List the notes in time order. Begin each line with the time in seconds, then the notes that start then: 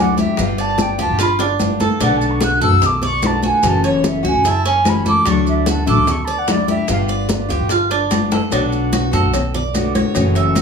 Already playing: D2 F#3 D5
0.00 A3 D4 E4 F#5
0.17 G4 E5, high bongo, high conga, maracas
0.37 G1 G3 B3 F4, high bongo, high conga, maracas
0.42 F5
0.58 D5 A5, high conga, maracas
0.78 G5, high bongo, high conga, maracas
0.98 D2 B3 F4 G4 A5, high bongo, high conga, maracas
1.09 G1
1.19 F4 B5, muted steel-string acoustic guitar stroke, high bongo, high conga, maracas
1.39 D4, high bongo, high conga, maracas
1.59 G3 B3 F4, low bongo, high conga, maracas
1.80 A4, low bongo, high conga, maracas
2.00 B1 B2 D3 A3 B3 D4 F#4 F#5, high bongo, maracas
2.17 A5, high conga, maracas
2.31 C#6
2.41 F#4 F#6, high bongo, high conga, maracas
2.61 F#2 D3 A3 B3 F#4 A4 E6, high bongo, high conga, maracas
2.71 B1
2.81 muted steel-string acoustic guitar stroke, high bongo, high conga, low conga, maracas
2.86 D6
3.02 D5 C#6, high bongo, high conga, low conga, maracas
3.21 D3 A3 B3 F#4, high bongo, low bongo, high conga, maracas
3.26 A5
3.43 F#4 G#5, high bongo, high conga, maracas
3.62 F#1 C#3 E3 A3 C#4 F#4, high bongo, maracas
3.67 A5
3.84 C#5, high conga, maracas
4.04 high bongo, high conga, maracas
4.08 E5
4.23 C#2 E3 A3 C#4 F#4 G#5, high bongo, maracas
4.34 F#1
4.43 E4, muted steel-string acoustic guitar stroke, high bongo, high conga, maracas
4.48 A5
4.65 C#4 G#5, high bongo, high conga, maracas
4.84 E3 A3 C#4 F#4, high bongo, low bongo, high conga, maracas
4.89 B5
5.05 A4 D6, high bongo, high conga, maracas
5.25 D2 D3 F#3 A3 D4 E4 C#6, high bongo, high conga, maracas
5.46 E5, high conga, maracas
5.66 F#4, high bongo, high conga, maracas
5.71 A5
5.86 A1 F#3 A3 D4 E4 A4 D6, high bongo, high conga, maracas
5.97 D2
6.06 muted steel-string acoustic guitar stroke, high bongo, high conga, low conga, maracas
6.11 C#6
6.25 D5 A5, high bongo, high conga, maracas
6.38 F#5
6.47 F#3 A3 D4 E4, high bongo, low bongo, high conga, maracas
6.52 D5
6.68 G4 E5, high bongo, high conga, maracas
6.87 G1 G3 B3 F4, high bongo, high conga, maracas
6.92 F5
7.08 D5, high conga, maracas
7.29 high bongo, high conga, maracas
7.49 D2 B3 F4 G4, high bongo, high conga, maracas
7.60 G1
7.69 F4, muted steel-string acoustic guitar stroke, high bongo, high conga, maracas
7.90 D4, high bongo, high conga, maracas
8.11 G3 B3 F4, high bongo, high conga, maracas
8.31 A4, low bongo, high conga, maracas
8.50 B1 B2 D3 A3 B3 D4 F#4, cowbell, high conga, maracas
8.72 high conga, maracas
8.93 F#4, cowbell, high conga, maracas
9.12 F#2 D3 A3 B3 F#4 A4, cowbell, high conga, maracas
9.23 B1
9.33 muted steel-string acoustic guitar stroke, cowbell, high conga, low conga, maracas
9.54 D5, high conga, low conga, maracas
9.74 D3 A3 B3 F#4, cowbell, high conga, maracas
9.95 C#5, cowbell, high conga, maracas
10.14 F#1 C#3 E3 A3 C#4 F#4, cowbell, maracas
10.35 E5, cowbell, high conga, maracas
10.55 cowbell, high conga, maracas